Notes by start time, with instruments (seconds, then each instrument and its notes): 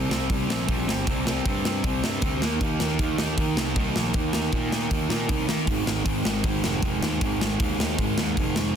Already playing: overdriven electric guitar G3 C4
0.09 picked electric bass C2, overdriven electric guitar C3 G3 C4, snare
0.29 picked electric bass C2, overdriven electric guitar C3 G3 C4, kick, open hi-hat
0.49 picked electric bass A#1, overdriven electric guitar C3 G3 C4, snare
0.68 picked electric bass A#1, overdriven electric guitar C3 G3 C4, kick, open hi-hat
0.87 picked electric bass G1, overdriven electric guitar C3 G3 C4, snare
1.06 picked electric bass C2, overdriven electric guitar C3 G3 C4, kick, open hi-hat
1.26 overdriven electric guitar C3 G3 C4, snare
1.44 picked electric bass G2, overdriven electric guitar C3 G3 C4, kick, open hi-hat
1.65 overdriven electric guitar C3 G3 C4, snare
1.83 picked electric bass C2, overdriven electric guitar C3 G3 C4, kick, open hi-hat
2.03 picked electric bass G2, overdriven electric guitar C3 G3 C4, snare
2.22 picked electric bass D2, overdriven electric guitar C3 G3 C4, kick, open hi-hat
2.41 picked electric bass D#2, overdriven electric guitar D#3 A#3 D#4, snare
2.60 picked electric bass D#2, overdriven electric guitar D#3 A#3 D#4, kick, open hi-hat
2.80 picked electric bass D#2, overdriven electric guitar D#3 A#3 D#4, snare
2.98 picked electric bass D#2, overdriven electric guitar D#3 A#3 D#4, kick, open hi-hat
3.18 picked electric bass D#2, overdriven electric guitar D#3 A#3 D#4, snare
3.37 picked electric bass D#2, overdriven electric guitar D#3 A#3 D#4, kick, open hi-hat
3.56 picked electric bass C2, overdriven electric guitar D#3 A#3 D#4, snare
3.76 picked electric bass C2, overdriven electric guitar D#3 A#3 D#4, kick, open hi-hat
3.95 picked electric bass A#1, overdriven electric guitar D#3 A#3 D#4, snare
4.13 picked electric bass D#2, overdriven electric guitar D#3 A#3 D#4, kick, open hi-hat
4.32 overdriven electric guitar D#3 A#3 D#4, snare
4.51 picked electric bass A#2, overdriven electric guitar D#3 A#3 D#4, kick, open hi-hat
4.70 overdriven electric guitar D#3 A#3 D#4, snare
4.89 picked electric bass D#2, overdriven electric guitar D#3 A#3 D#4, kick, open hi-hat
5.08 picked electric bass A#2, overdriven electric guitar D#3 A#3 D#4, snare
5.27 picked electric bass C2, overdriven electric guitar D#3 A#3 D#4, kick, open hi-hat
5.47 overdriven electric guitar D#3 A#3 D#4, picked electric bass D#3, snare
5.65 picked electric bass G#1, overdriven electric guitar G#2 D#3 G#3, kick, open hi-hat
5.85 picked electric bass G#1, overdriven electric guitar G#2 D#3 G#3, snare
6.04 picked electric bass G#1, overdriven electric guitar G#2 D#3 G#3, kick, open hi-hat
6.24 picked electric bass G#1, overdriven electric guitar G#2 D#3 G#3, snare
6.43 picked electric bass G#1, overdriven electric guitar G#2 D#3 G#3, kick, open hi-hat
6.62 picked electric bass F1, overdriven electric guitar G#2 D#3 G#3, snare
6.82 picked electric bass F1, overdriven electric guitar G#2 D#3 G#3, kick, open hi-hat
7.00 picked electric bass D#2, overdriven electric guitar G#2 D#3 G#3, snare
7.20 picked electric bass G#1, overdriven electric guitar G#2 D#3 G#3, kick, open hi-hat
7.39 overdriven electric guitar G#2 D#3 G#3, snare
7.59 picked electric bass D#2, overdriven electric guitar G#2 D#3 G#3, kick, open hi-hat
7.79 overdriven electric guitar G#2 D#3 G#3, snare
7.98 picked electric bass G#1, overdriven electric guitar G#2 D#3 G#3, kick, open hi-hat
8.18 picked electric bass D#2, overdriven electric guitar G#2 D#3 G#3, snare
8.37 picked electric bass F1, overdriven electric guitar G#2 D#3 G#3, kick, open hi-hat
8.56 picked electric bass F1, overdriven electric guitar G#2 D#3 G#3, snare